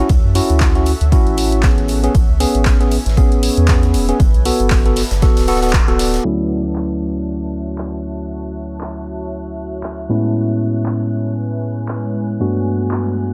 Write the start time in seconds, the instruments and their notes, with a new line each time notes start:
Already playing: ambient pad A4 C#5 E5 F#5
0.09 analog synth bass D2, kick, closed hi-hat
0.24 analog synth bass F#2
0.35 tine electric piano C#4 E4 F#4, closed hi-hat, open hi-hat
0.50 analog synth bass D2, closed hi-hat
0.60 kick, snare, clap, closed hi-hat
0.75 tine electric piano C#4 E4 F#4, closed hi-hat
0.86 closed hi-hat, open hi-hat
1.01 analog synth bass D2, closed hi-hat
1.12 tine electric piano C#4 E4 F#4, kick, closed hi-hat
1.27 analog synth bass A1, closed hi-hat
1.37 closed hi-hat, open hi-hat
1.52 closed hi-hat
1.63 tine electric piano B3, kick, snare, clap, closed hi-hat
1.78 analog synth bass A1, closed hi-hat
1.88 ambient pad B4 G#5, closed hi-hat, open hi-hat
2.03 tine electric piano B3 C#4 G#4, closed hi-hat
2.15 analog synth bass A1, kick, closed hi-hat
2.29 analog synth bass C#2
2.40 tine electric piano B3 C#4 G#4, closed hi-hat, open hi-hat
2.55 analog synth bass A1, closed hi-hat
2.65 kick, snare, clap, closed hi-hat
2.80 tine electric piano B3 C#4 G#4, closed hi-hat
2.91 closed hi-hat, open hi-hat
3.06 analog synth bass A1, snare, closed hi-hat
3.17 tine electric piano B3 C#4 G#4, kick, closed hi-hat
3.32 closed hi-hat
3.43 closed hi-hat, open hi-hat
3.57 analog synth bass E2, closed hi-hat
3.68 tine electric piano B3 C#4 G#4, kick, snare, clap, closed hi-hat
3.83 closed hi-hat
3.94 analog synth bass E1, closed hi-hat, open hi-hat
4.09 tine electric piano B3 C#4 G#4, closed hi-hat
4.20 analog synth bass G1, ambient pad D5 F#5 A5, kick, closed hi-hat
4.34 analog synth bass B1, closed hi-hat
4.45 tine electric piano B3 F#4 A4, closed hi-hat, open hi-hat
4.60 analog synth bass G1, closed hi-hat
4.70 kick, snare, clap, closed hi-hat, open hi-hat
4.85 tine electric piano B3 F#4 A4, closed hi-hat
4.96 snare, closed hi-hat, open hi-hat
5.11 analog synth bass G1, snare, closed hi-hat
5.22 tine electric piano B3 F#4 A4, kick, snare, closed hi-hat
5.37 analog synth bass D1, snare, closed hi-hat, open hi-hat
5.47 tine electric piano B3 F#4 A4, snare, closed hi-hat, open hi-hat
5.55 snare, closed hi-hat
5.62 tine electric piano B3 F#4 A4, snare, closed hi-hat
5.68 snare, closed hi-hat
5.73 kick, snare, clap, closed hi-hat
5.88 analog synth bass D1, tine electric piano B3 F#4 A4, closed hi-hat
5.99 snare, closed hi-hat, open hi-hat
6.14 snare, closed hi-hat
6.24 tine electric piano D2 F#3 A3 C#4 E4, ambient pad F#4 C#5 E5 A5, string machine F#6
6.76 clap
7.78 clap
8.81 clap
9.83 clap
10.09 tine electric piano A2 G#3 B3 C#4 E4, ambient pad G#3 B4 G#5
10.86 clap
11.88 clap
12.40 tine electric piano G2 A3 B3 D4 F#4, ambient pad G3 B4 F#5
12.91 clap